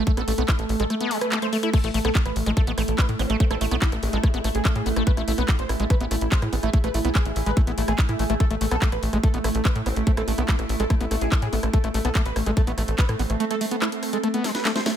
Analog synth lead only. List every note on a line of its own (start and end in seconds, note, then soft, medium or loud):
0.07 0.12 A3 medium
0.17 0.22 A4 loud
0.28 0.33 A3 medium
0.38 0.43 A3 medium
0.48 0.54 E4 loud
0.59 0.64 A3 medium
0.69 0.74 A3 medium
0.80 0.85 A4 loud
0.90 0.95 A3 medium
1.00 1.06 A3 medium
1.11 1.16 A3 medium
1.21 1.27 B4 medium
1.32 1.37 A3 medium
1.42 1.47 C5 medium
1.53 1.58 A3 medium
1.63 1.68 A3 medium
1.73 1.79 A4 loud
1.84 1.89 A3 medium
1.94 1.99 A3 medium
2.05 2.10 A4 medium
2.15 2.20 A3 medium
2.25 2.31 B4 medium
2.36 2.41 A3 medium
2.46 2.52 A3 medium
2.57 2.62 A4 loud
2.67 2.72 A3 medium
2.78 2.83 A3 medium
2.88 2.93 A3 medium
2.98 3.04 B4 medium
3.09 3.14 A3 medium
3.30 3.35 A3 medium
3.40 3.45 A3 medium
3.50 3.56 A4 medium
3.61 3.66 A3 medium
3.71 3.77 A3 medium
3.82 3.87 E4 loud
3.92 3.97 A3 medium
4.03 4.08 A3 medium
4.13 4.18 A4 loud
4.23 4.29 A3 medium
4.34 4.39 A3 medium
4.44 4.49 A3 medium
4.55 4.60 G#4 medium
4.65 4.70 A3 medium
4.76 4.81 G#4 medium
4.86 4.91 A3 medium
4.96 5.02 A3 medium
5.07 5.12 B4 loud
5.17 5.22 E4 medium
5.28 5.33 E4 medium
5.38 5.43 B4 medium
5.49 5.54 E4 medium
5.59 5.64 C5 loud
5.69 5.74 E4 medium
5.80 5.85 E4 medium
5.90 5.95 B4 loud
6.01 6.06 E4 medium
6.11 6.16 E4 medium
6.21 6.27 E4 medium
6.32 6.37 C5 medium
6.42 6.47 E4 medium
6.63 6.68 E4 medium
6.73 6.79 E4 medium
6.84 6.89 B4 medium
6.94 6.99 E4 medium
7.05 7.10 E4 medium
7.15 7.20 G#4 loud
7.26 7.31 E4 medium
7.36 7.41 E4 medium
7.46 7.52 B4 loud
7.57 7.62 E4 medium
7.67 7.72 E4 medium
7.78 7.83 E4 medium
7.88 7.93 G#4 medium
7.98 8.04 E4 medium
8.09 8.14 E4 medium
8.19 8.24 E4 medium
8.30 8.35 E4 medium
8.40 8.45 A4 loud
8.51 8.56 A3 medium
8.61 8.66 A3 medium
8.71 8.77 A4 medium
8.82 8.87 A3 medium
8.92 8.97 B4 loud
9.03 9.08 A3 medium
9.13 9.18 A3 medium
9.23 9.29 A4 loud
9.34 9.39 A3 medium
9.44 9.49 A3 medium
9.55 9.60 A3 medium
9.65 9.70 B4 medium
9.76 9.81 A3 medium
9.96 10.02 A3 medium
10.07 10.12 A3 medium
10.17 10.22 A4 medium
10.28 10.33 A3 medium
10.38 10.43 A3 medium
10.49 10.54 E4 loud
10.59 10.64 A3 medium
10.69 10.74 A3 medium
10.80 10.85 A4 loud
10.90 10.95 A3 medium
11.01 11.06 A3 medium
11.11 11.16 A3 medium
11.21 11.27 G#4 medium
11.32 11.37 A3 medium
11.42 11.47 G#4 loud
11.53 11.58 A3 medium
11.63 11.68 A3 medium
11.73 11.79 A4 loud
11.84 11.89 A3 medium
11.94 11.99 A3 medium
12.05 12.10 A4 medium
12.15 12.20 A3 medium
12.26 12.31 B4 loud
12.36 12.41 A3 medium
12.46 12.52 A3 medium
12.57 12.62 A4 loud
12.67 12.72 A3 medium
12.78 12.83 A3 medium
12.88 12.93 A3 medium
12.99 13.04 B4 medium
13.09 13.14 A3 medium
13.30 13.35 A3 medium
13.40 13.45 A3 medium
13.51 13.56 A4 medium
13.61 13.66 A3 medium
13.71 13.77 A3 medium
13.82 13.87 E4 loud
13.92 13.97 A3 medium
14.03 14.08 A3 medium
14.13 14.18 A4 loud
14.24 14.29 A3 medium
14.34 14.39 A3 medium
14.44 14.49 A3 medium
14.55 14.60 B4 medium
14.65 14.70 A3 medium
14.76 14.81 C5 medium
14.86 14.91 A3 medium